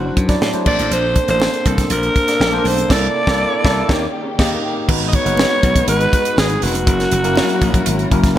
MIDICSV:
0, 0, Header, 1, 6, 480
1, 0, Start_track
1, 0, Tempo, 496278
1, 883, Time_signature, 4, 2, 24, 8
1, 8108, End_track
2, 0, Start_track
2, 0, Title_t, "Alto saxophone"
2, 0, Program_c, 0, 65
2, 0, Note_on_c, 0, 66, 85
2, 170, Note_off_c, 0, 66, 0
2, 650, Note_on_c, 0, 74, 106
2, 870, Note_off_c, 0, 74, 0
2, 899, Note_on_c, 0, 72, 103
2, 1227, Note_off_c, 0, 72, 0
2, 1261, Note_on_c, 0, 72, 107
2, 1622, Note_on_c, 0, 69, 91
2, 1636, Note_off_c, 0, 72, 0
2, 1853, Note_off_c, 0, 69, 0
2, 1857, Note_on_c, 0, 70, 110
2, 2584, Note_on_c, 0, 72, 94
2, 2599, Note_off_c, 0, 70, 0
2, 2827, Note_on_c, 0, 74, 112
2, 2841, Note_off_c, 0, 72, 0
2, 4256, Note_off_c, 0, 74, 0
2, 4913, Note_on_c, 0, 75, 80
2, 4981, Note_on_c, 0, 73, 122
2, 4995, Note_off_c, 0, 75, 0
2, 5689, Note_off_c, 0, 73, 0
2, 5695, Note_on_c, 0, 71, 110
2, 6182, Note_on_c, 0, 68, 91
2, 6197, Note_off_c, 0, 71, 0
2, 6415, Note_on_c, 0, 66, 106
2, 6429, Note_off_c, 0, 68, 0
2, 8108, Note_off_c, 0, 66, 0
2, 8108, End_track
3, 0, Start_track
3, 0, Title_t, "Tine electric piano"
3, 0, Program_c, 1, 4
3, 0, Control_c, 1, 64, 127
3, 0, Note_on_c, 1, 54, 70
3, 0, Note_on_c, 1, 62, 62
3, 0, Note_on_c, 1, 64, 69
3, 0, Note_on_c, 1, 72, 75
3, 198, Note_off_c, 1, 54, 0
3, 200, Note_off_c, 1, 62, 0
3, 201, Note_off_c, 1, 64, 0
3, 203, Note_off_c, 1, 72, 0
3, 270, Note_on_c, 1, 54, 89
3, 275, Note_on_c, 1, 62, 79
3, 278, Note_on_c, 1, 64, 75
3, 283, Note_on_c, 1, 74, 101
3, 485, Note_off_c, 1, 54, 0
3, 487, Note_off_c, 1, 62, 0
3, 489, Note_off_c, 1, 64, 0
3, 491, Note_off_c, 1, 74, 0
3, 516, Note_on_c, 1, 54, 74
3, 519, Note_on_c, 1, 62, 67
3, 522, Note_on_c, 1, 64, 65
3, 525, Note_on_c, 1, 72, 77
3, 625, Note_off_c, 1, 62, 0
3, 633, Note_on_c, 1, 58, 81
3, 634, Note_off_c, 1, 72, 0
3, 636, Note_on_c, 1, 62, 72
3, 640, Note_off_c, 1, 54, 0
3, 640, Note_on_c, 1, 69, 71
3, 643, Note_off_c, 1, 64, 0
3, 646, Note_on_c, 1, 72, 83
3, 654, Control_c, 1, 64, 0
3, 839, Control_c, 1, 64, 127
3, 1158, Note_off_c, 1, 58, 0
3, 1160, Note_off_c, 1, 62, 0
3, 1162, Note_off_c, 1, 69, 0
3, 1165, Note_off_c, 1, 72, 0
3, 1242, Note_on_c, 1, 58, 77
3, 1246, Note_on_c, 1, 62, 68
3, 1251, Note_on_c, 1, 69, 65
3, 1255, Note_on_c, 1, 72, 86
3, 1555, Note_off_c, 1, 58, 0
3, 1557, Note_off_c, 1, 62, 0
3, 1559, Note_off_c, 1, 69, 0
3, 1561, Note_off_c, 1, 72, 0
3, 1599, Note_on_c, 1, 58, 71
3, 1605, Note_on_c, 1, 62, 67
3, 1610, Note_on_c, 1, 69, 67
3, 1612, Note_on_c, 1, 72, 77
3, 2121, Note_off_c, 1, 58, 0
3, 2125, Note_off_c, 1, 62, 0
3, 2127, Note_off_c, 1, 69, 0
3, 2128, Note_off_c, 1, 72, 0
3, 2201, Note_on_c, 1, 58, 72
3, 2205, Note_on_c, 1, 62, 68
3, 2212, Note_on_c, 1, 69, 73
3, 2212, Note_on_c, 1, 74, 81
3, 2410, Note_off_c, 1, 58, 0
3, 2413, Note_off_c, 1, 62, 0
3, 2416, Note_off_c, 1, 69, 0
3, 2416, Note_off_c, 1, 74, 0
3, 2439, Note_on_c, 1, 58, 72
3, 2443, Note_on_c, 1, 62, 71
3, 2445, Note_on_c, 1, 69, 67
3, 2452, Note_on_c, 1, 72, 85
3, 2754, Note_off_c, 1, 58, 0
3, 2756, Note_off_c, 1, 62, 0
3, 2757, Note_off_c, 1, 69, 0
3, 2760, Note_off_c, 1, 72, 0
3, 2797, Note_on_c, 1, 58, 99
3, 2800, Note_on_c, 1, 64, 99
3, 2806, Note_on_c, 1, 69, 91
3, 2808, Note_on_c, 1, 74, 95
3, 2816, Control_c, 1, 64, 0
3, 2964, Note_off_c, 1, 58, 0
3, 2965, Note_off_c, 1, 64, 0
3, 2969, Note_off_c, 1, 69, 0
3, 2970, Note_off_c, 1, 74, 0
3, 2981, Control_c, 1, 64, 127
3, 3157, Note_on_c, 1, 58, 100
3, 3164, Note_on_c, 1, 64, 100
3, 3166, Note_on_c, 1, 69, 102
3, 3168, Note_on_c, 1, 74, 109
3, 3323, Note_off_c, 1, 58, 0
3, 3327, Note_off_c, 1, 64, 0
3, 3329, Note_off_c, 1, 69, 0
3, 3330, Note_off_c, 1, 74, 0
3, 3515, Note_on_c, 1, 58, 95
3, 3522, Note_on_c, 1, 64, 97
3, 3524, Note_on_c, 1, 69, 103
3, 3526, Note_on_c, 1, 74, 96
3, 3682, Note_off_c, 1, 58, 0
3, 3686, Note_off_c, 1, 64, 0
3, 3687, Note_off_c, 1, 69, 0
3, 3689, Note_off_c, 1, 74, 0
3, 3753, Note_on_c, 1, 58, 96
3, 3756, Note_on_c, 1, 63, 101
3, 3759, Note_on_c, 1, 67, 101
3, 3767, Note_on_c, 1, 73, 97
3, 3776, Control_c, 1, 64, 0
3, 3921, Note_off_c, 1, 58, 0
3, 3923, Note_off_c, 1, 63, 0
3, 3924, Note_off_c, 1, 67, 0
3, 3929, Note_off_c, 1, 73, 0
3, 3965, Control_c, 1, 64, 127
3, 4238, Note_on_c, 1, 58, 102
3, 4240, Note_on_c, 1, 63, 100
3, 4247, Note_on_c, 1, 67, 105
3, 4248, Note_on_c, 1, 75, 103
3, 4404, Note_off_c, 1, 58, 0
3, 4405, Note_off_c, 1, 63, 0
3, 4409, Note_off_c, 1, 67, 0
3, 4410, Note_off_c, 1, 75, 0
3, 4718, Note_on_c, 1, 56, 85
3, 4720, Note_on_c, 1, 59, 83
3, 4724, Note_on_c, 1, 63, 77
3, 4726, Note_on_c, 1, 66, 78
3, 4730, Note_on_c, 1, 71, 92
3, 4736, Control_c, 1, 64, 0
3, 4931, Control_c, 1, 64, 127
3, 5033, Note_off_c, 1, 56, 0
3, 5034, Note_off_c, 1, 59, 0
3, 5036, Note_off_c, 1, 63, 0
3, 5037, Note_off_c, 1, 66, 0
3, 5039, Note_off_c, 1, 71, 0
3, 5073, Note_on_c, 1, 56, 76
3, 5078, Note_on_c, 1, 59, 69
3, 5079, Note_on_c, 1, 63, 70
3, 5083, Note_on_c, 1, 66, 69
3, 5084, Note_on_c, 1, 71, 82
3, 5598, Note_off_c, 1, 56, 0
3, 5601, Note_off_c, 1, 59, 0
3, 5602, Note_off_c, 1, 63, 0
3, 5604, Note_off_c, 1, 66, 0
3, 5604, Note_off_c, 1, 71, 0
3, 5678, Note_on_c, 1, 56, 74
3, 5680, Note_on_c, 1, 59, 67
3, 5683, Note_on_c, 1, 63, 67
3, 5687, Note_on_c, 1, 66, 68
3, 5688, Note_on_c, 1, 71, 81
3, 6513, Note_off_c, 1, 56, 0
3, 6514, Note_off_c, 1, 59, 0
3, 6515, Note_off_c, 1, 63, 0
3, 6517, Note_off_c, 1, 66, 0
3, 6518, Note_off_c, 1, 71, 0
3, 6641, Note_on_c, 1, 54, 74
3, 6643, Note_on_c, 1, 58, 68
3, 6647, Note_on_c, 1, 61, 65
3, 6648, Note_on_c, 1, 64, 67
3, 6652, Note_on_c, 1, 70, 77
3, 6657, Control_c, 1, 64, 0
3, 6819, Control_c, 1, 64, 127
3, 6954, Note_off_c, 1, 54, 0
3, 6955, Note_off_c, 1, 58, 0
3, 6957, Note_off_c, 1, 61, 0
3, 6957, Note_off_c, 1, 64, 0
3, 6959, Note_off_c, 1, 70, 0
3, 6998, Note_on_c, 1, 54, 94
3, 7004, Note_on_c, 1, 58, 85
3, 7007, Note_on_c, 1, 61, 79
3, 7009, Note_on_c, 1, 64, 85
3, 7011, Note_on_c, 1, 70, 105
3, 7728, Note_off_c, 1, 54, 0
3, 7731, Note_off_c, 1, 58, 0
3, 7733, Note_off_c, 1, 61, 0
3, 7734, Note_off_c, 1, 64, 0
3, 7734, Note_off_c, 1, 70, 0
3, 7843, Note_on_c, 1, 54, 87
3, 7845, Note_on_c, 1, 58, 83
3, 7847, Note_on_c, 1, 61, 83
3, 7849, Note_on_c, 1, 64, 82
3, 7854, Note_on_c, 1, 70, 102
3, 8069, Note_off_c, 1, 54, 0
3, 8070, Note_off_c, 1, 58, 0
3, 8075, Note_off_c, 1, 61, 0
3, 8076, Note_off_c, 1, 64, 0
3, 8081, Note_off_c, 1, 70, 0
3, 8095, Control_c, 1, 64, 0
3, 8108, End_track
4, 0, Start_track
4, 0, Title_t, "String section"
4, 0, Program_c, 2, 48
4, 0, Note_on_c, 2, 54, 77
4, 0, Note_on_c, 2, 60, 68
4, 0, Note_on_c, 2, 62, 83
4, 606, Note_off_c, 2, 60, 0
4, 622, Note_off_c, 2, 54, 0
4, 642, Note_on_c, 2, 58, 72
4, 644, Note_on_c, 2, 60, 80
4, 2764, Note_off_c, 2, 62, 0
4, 2783, Note_off_c, 2, 60, 0
4, 2800, Note_on_c, 2, 48, 75
4, 2800, Note_on_c, 2, 69, 81
4, 2802, Note_on_c, 2, 64, 70
4, 2803, Note_on_c, 2, 62, 69
4, 3753, Note_off_c, 2, 48, 0
4, 3753, Note_off_c, 2, 69, 0
4, 3754, Note_off_c, 2, 62, 0
4, 3754, Note_off_c, 2, 64, 0
4, 3756, Note_on_c, 2, 51, 80
4, 3757, Note_on_c, 2, 67, 87
4, 3759, Note_on_c, 2, 49, 76
4, 4685, Note_off_c, 2, 58, 0
4, 4711, Note_off_c, 2, 51, 0
4, 4711, Note_off_c, 2, 67, 0
4, 4712, Note_off_c, 2, 49, 0
4, 4724, Note_on_c, 2, 71, 90
4, 4725, Note_on_c, 2, 63, 72
4, 4727, Note_on_c, 2, 66, 76
4, 4729, Note_on_c, 2, 56, 84
4, 6624, Note_off_c, 2, 71, 0
4, 6625, Note_off_c, 2, 63, 0
4, 6626, Note_off_c, 2, 66, 0
4, 6627, Note_off_c, 2, 56, 0
4, 6639, Note_on_c, 2, 70, 86
4, 6640, Note_on_c, 2, 61, 77
4, 6642, Note_on_c, 2, 64, 77
4, 6643, Note_on_c, 2, 54, 80
4, 8065, Note_off_c, 2, 70, 0
4, 8067, Note_off_c, 2, 64, 0
4, 8108, Note_off_c, 2, 54, 0
4, 8108, Note_off_c, 2, 61, 0
4, 8108, End_track
5, 0, Start_track
5, 0, Title_t, "Slap bass"
5, 0, Program_c, 3, 36
5, 163, Note_on_c, 3, 42, 88
5, 337, Note_off_c, 3, 42, 0
5, 402, Note_on_c, 3, 45, 100
5, 489, Note_off_c, 3, 45, 0
5, 639, Note_on_c, 3, 34, 97
5, 728, Note_off_c, 3, 34, 0
5, 767, Note_on_c, 3, 33, 101
5, 853, Note_off_c, 3, 33, 0
5, 880, Note_on_c, 3, 34, 112
5, 1142, Note_off_c, 3, 34, 0
5, 1240, Note_on_c, 3, 33, 79
5, 1415, Note_off_c, 3, 33, 0
5, 1605, Note_on_c, 3, 36, 88
5, 1778, Note_off_c, 3, 36, 0
5, 1839, Note_on_c, 3, 34, 105
5, 2014, Note_off_c, 3, 34, 0
5, 2321, Note_on_c, 3, 34, 92
5, 2496, Note_off_c, 3, 34, 0
5, 2564, Note_on_c, 3, 35, 85
5, 2738, Note_off_c, 3, 35, 0
5, 2807, Note_on_c, 3, 36, 106
5, 2969, Note_off_c, 3, 36, 0
5, 3166, Note_on_c, 3, 36, 96
5, 3328, Note_off_c, 3, 36, 0
5, 3528, Note_on_c, 3, 36, 98
5, 3690, Note_off_c, 3, 36, 0
5, 3766, Note_on_c, 3, 39, 100
5, 3928, Note_off_c, 3, 39, 0
5, 4245, Note_on_c, 3, 39, 103
5, 4408, Note_off_c, 3, 39, 0
5, 4727, Note_on_c, 3, 32, 115
5, 4986, Note_off_c, 3, 32, 0
5, 5082, Note_on_c, 3, 30, 82
5, 5256, Note_off_c, 3, 30, 0
5, 5448, Note_on_c, 3, 35, 94
5, 5620, Note_off_c, 3, 35, 0
5, 5681, Note_on_c, 3, 32, 96
5, 5856, Note_off_c, 3, 32, 0
5, 6166, Note_on_c, 3, 32, 87
5, 6339, Note_off_c, 3, 32, 0
5, 6410, Note_on_c, 3, 29, 80
5, 6645, Note_off_c, 3, 29, 0
5, 6645, Note_on_c, 3, 30, 116
5, 6818, Note_off_c, 3, 30, 0
5, 6886, Note_on_c, 3, 30, 101
5, 7145, Note_off_c, 3, 30, 0
5, 7367, Note_on_c, 3, 34, 87
5, 7539, Note_off_c, 3, 34, 0
5, 7608, Note_on_c, 3, 32, 88
5, 7780, Note_off_c, 3, 32, 0
5, 7850, Note_on_c, 3, 30, 101
5, 8021, Note_off_c, 3, 30, 0
5, 8079, Note_on_c, 3, 30, 105
5, 8108, Note_off_c, 3, 30, 0
5, 8108, End_track
6, 0, Start_track
6, 0, Title_t, "Drums"
6, 163, Note_on_c, 9, 36, 80
6, 163, Note_on_c, 9, 42, 70
6, 172, Note_on_c, 9, 62, 33
6, 259, Note_off_c, 9, 42, 0
6, 260, Note_off_c, 9, 36, 0
6, 268, Note_off_c, 9, 62, 0
6, 278, Note_on_c, 9, 42, 51
6, 280, Note_on_c, 9, 36, 86
6, 288, Note_on_c, 9, 38, 39
6, 375, Note_off_c, 9, 42, 0
6, 376, Note_off_c, 9, 36, 0
6, 384, Note_off_c, 9, 38, 0
6, 398, Note_on_c, 9, 63, 66
6, 405, Note_on_c, 9, 38, 99
6, 494, Note_off_c, 9, 63, 0
6, 502, Note_off_c, 9, 38, 0
6, 516, Note_on_c, 9, 42, 33
6, 522, Note_on_c, 9, 63, 71
6, 613, Note_off_c, 9, 42, 0
6, 619, Note_off_c, 9, 63, 0
6, 637, Note_on_c, 9, 49, 77
6, 639, Note_on_c, 9, 63, 51
6, 640, Note_on_c, 9, 36, 109
6, 734, Note_off_c, 9, 49, 0
6, 736, Note_off_c, 9, 63, 0
6, 737, Note_off_c, 9, 36, 0
6, 765, Note_on_c, 9, 42, 51
6, 862, Note_off_c, 9, 42, 0
6, 885, Note_on_c, 9, 42, 73
6, 982, Note_off_c, 9, 42, 0
6, 1119, Note_on_c, 9, 42, 68
6, 1121, Note_on_c, 9, 36, 90
6, 1215, Note_off_c, 9, 42, 0
6, 1218, Note_off_c, 9, 36, 0
6, 1240, Note_on_c, 9, 42, 47
6, 1337, Note_off_c, 9, 42, 0
6, 1352, Note_on_c, 9, 63, 72
6, 1369, Note_on_c, 9, 38, 118
6, 1449, Note_off_c, 9, 63, 0
6, 1466, Note_off_c, 9, 38, 0
6, 1483, Note_on_c, 9, 42, 38
6, 1580, Note_off_c, 9, 42, 0
6, 1602, Note_on_c, 9, 42, 78
6, 1603, Note_on_c, 9, 36, 89
6, 1613, Note_on_c, 9, 62, 47
6, 1699, Note_off_c, 9, 42, 0
6, 1700, Note_off_c, 9, 36, 0
6, 1710, Note_off_c, 9, 62, 0
6, 1722, Note_on_c, 9, 42, 61
6, 1723, Note_on_c, 9, 36, 79
6, 1729, Note_on_c, 9, 38, 35
6, 1819, Note_off_c, 9, 36, 0
6, 1819, Note_off_c, 9, 42, 0
6, 1825, Note_off_c, 9, 38, 0
6, 1838, Note_on_c, 9, 42, 90
6, 1851, Note_on_c, 9, 62, 49
6, 1934, Note_off_c, 9, 42, 0
6, 1947, Note_off_c, 9, 62, 0
6, 1964, Note_on_c, 9, 42, 34
6, 2060, Note_off_c, 9, 42, 0
6, 2087, Note_on_c, 9, 36, 84
6, 2087, Note_on_c, 9, 42, 70
6, 2090, Note_on_c, 9, 62, 34
6, 2183, Note_off_c, 9, 36, 0
6, 2183, Note_off_c, 9, 42, 0
6, 2187, Note_off_c, 9, 62, 0
6, 2205, Note_on_c, 9, 42, 53
6, 2214, Note_on_c, 9, 38, 38
6, 2301, Note_off_c, 9, 42, 0
6, 2310, Note_off_c, 9, 38, 0
6, 2320, Note_on_c, 9, 63, 65
6, 2333, Note_on_c, 9, 38, 100
6, 2416, Note_off_c, 9, 63, 0
6, 2430, Note_off_c, 9, 38, 0
6, 2441, Note_on_c, 9, 63, 69
6, 2538, Note_off_c, 9, 63, 0
6, 2557, Note_on_c, 9, 63, 51
6, 2564, Note_on_c, 9, 46, 79
6, 2653, Note_off_c, 9, 63, 0
6, 2661, Note_off_c, 9, 46, 0
6, 2689, Note_on_c, 9, 42, 48
6, 2786, Note_off_c, 9, 42, 0
6, 2806, Note_on_c, 9, 36, 106
6, 2809, Note_on_c, 9, 57, 89
6, 2815, Note_on_c, 9, 38, 113
6, 2902, Note_off_c, 9, 36, 0
6, 2906, Note_off_c, 9, 57, 0
6, 2911, Note_off_c, 9, 38, 0
6, 3165, Note_on_c, 9, 36, 108
6, 3170, Note_on_c, 9, 38, 107
6, 3262, Note_off_c, 9, 36, 0
6, 3266, Note_off_c, 9, 38, 0
6, 3526, Note_on_c, 9, 36, 116
6, 3534, Note_on_c, 9, 38, 111
6, 3623, Note_off_c, 9, 36, 0
6, 3631, Note_off_c, 9, 38, 0
6, 3765, Note_on_c, 9, 36, 113
6, 3771, Note_on_c, 9, 38, 107
6, 3862, Note_off_c, 9, 36, 0
6, 3867, Note_off_c, 9, 38, 0
6, 4245, Note_on_c, 9, 36, 101
6, 4246, Note_on_c, 9, 57, 75
6, 4252, Note_on_c, 9, 38, 92
6, 4342, Note_off_c, 9, 36, 0
6, 4343, Note_off_c, 9, 57, 0
6, 4349, Note_off_c, 9, 38, 0
6, 4726, Note_on_c, 9, 36, 106
6, 4727, Note_on_c, 9, 57, 98
6, 4823, Note_off_c, 9, 36, 0
6, 4824, Note_off_c, 9, 57, 0
6, 4960, Note_on_c, 9, 42, 72
6, 4965, Note_on_c, 9, 36, 91
6, 5057, Note_off_c, 9, 42, 0
6, 5062, Note_off_c, 9, 36, 0
6, 5088, Note_on_c, 9, 42, 51
6, 5185, Note_off_c, 9, 42, 0
6, 5197, Note_on_c, 9, 63, 82
6, 5217, Note_on_c, 9, 38, 123
6, 5294, Note_off_c, 9, 63, 0
6, 5314, Note_off_c, 9, 38, 0
6, 5448, Note_on_c, 9, 36, 91
6, 5448, Note_on_c, 9, 42, 73
6, 5458, Note_on_c, 9, 62, 47
6, 5544, Note_off_c, 9, 42, 0
6, 5545, Note_off_c, 9, 36, 0
6, 5554, Note_off_c, 9, 62, 0
6, 5567, Note_on_c, 9, 36, 93
6, 5567, Note_on_c, 9, 42, 69
6, 5664, Note_off_c, 9, 36, 0
6, 5664, Note_off_c, 9, 42, 0
6, 5685, Note_on_c, 9, 42, 96
6, 5692, Note_on_c, 9, 62, 52
6, 5781, Note_off_c, 9, 42, 0
6, 5788, Note_off_c, 9, 62, 0
6, 5808, Note_on_c, 9, 42, 37
6, 5905, Note_off_c, 9, 42, 0
6, 5929, Note_on_c, 9, 36, 80
6, 5930, Note_on_c, 9, 42, 67
6, 5931, Note_on_c, 9, 62, 35
6, 6025, Note_off_c, 9, 36, 0
6, 6026, Note_off_c, 9, 42, 0
6, 6028, Note_off_c, 9, 62, 0
6, 6048, Note_on_c, 9, 42, 52
6, 6144, Note_off_c, 9, 42, 0
6, 6161, Note_on_c, 9, 63, 63
6, 6171, Note_on_c, 9, 38, 104
6, 6258, Note_off_c, 9, 63, 0
6, 6268, Note_off_c, 9, 38, 0
6, 6283, Note_on_c, 9, 63, 74
6, 6284, Note_on_c, 9, 42, 35
6, 6380, Note_off_c, 9, 42, 0
6, 6380, Note_off_c, 9, 63, 0
6, 6403, Note_on_c, 9, 46, 79
6, 6499, Note_off_c, 9, 46, 0
6, 6528, Note_on_c, 9, 42, 56
6, 6625, Note_off_c, 9, 42, 0
6, 6646, Note_on_c, 9, 36, 114
6, 6646, Note_on_c, 9, 42, 86
6, 6742, Note_off_c, 9, 36, 0
6, 6742, Note_off_c, 9, 42, 0
6, 6770, Note_on_c, 9, 42, 35
6, 6771, Note_on_c, 9, 38, 31
6, 6866, Note_off_c, 9, 42, 0
6, 6868, Note_off_c, 9, 38, 0
6, 6882, Note_on_c, 9, 42, 75
6, 6978, Note_off_c, 9, 42, 0
6, 7005, Note_on_c, 9, 42, 51
6, 7102, Note_off_c, 9, 42, 0
6, 7114, Note_on_c, 9, 63, 83
6, 7132, Note_on_c, 9, 38, 116
6, 7211, Note_off_c, 9, 63, 0
6, 7228, Note_off_c, 9, 38, 0
6, 7246, Note_on_c, 9, 42, 38
6, 7342, Note_off_c, 9, 42, 0
6, 7365, Note_on_c, 9, 42, 76
6, 7367, Note_on_c, 9, 36, 88
6, 7375, Note_on_c, 9, 62, 47
6, 7375, Note_on_c, 9, 64, 68
6, 7462, Note_off_c, 9, 42, 0
6, 7463, Note_off_c, 9, 36, 0
6, 7472, Note_off_c, 9, 62, 0
6, 7472, Note_off_c, 9, 64, 0
6, 7487, Note_on_c, 9, 36, 88
6, 7487, Note_on_c, 9, 42, 70
6, 7583, Note_off_c, 9, 36, 0
6, 7583, Note_off_c, 9, 42, 0
6, 7602, Note_on_c, 9, 42, 93
6, 7614, Note_on_c, 9, 62, 54
6, 7698, Note_off_c, 9, 42, 0
6, 7711, Note_off_c, 9, 62, 0
6, 7728, Note_on_c, 9, 42, 35
6, 7825, Note_off_c, 9, 42, 0
6, 7849, Note_on_c, 9, 36, 89
6, 7849, Note_on_c, 9, 42, 71
6, 7858, Note_on_c, 9, 62, 37
6, 7945, Note_off_c, 9, 42, 0
6, 7946, Note_off_c, 9, 36, 0
6, 7955, Note_off_c, 9, 62, 0
6, 7965, Note_on_c, 9, 36, 97
6, 7967, Note_on_c, 9, 42, 54
6, 7976, Note_on_c, 9, 38, 40
6, 8062, Note_off_c, 9, 36, 0
6, 8063, Note_off_c, 9, 42, 0
6, 8072, Note_off_c, 9, 38, 0
6, 8108, End_track
0, 0, End_of_file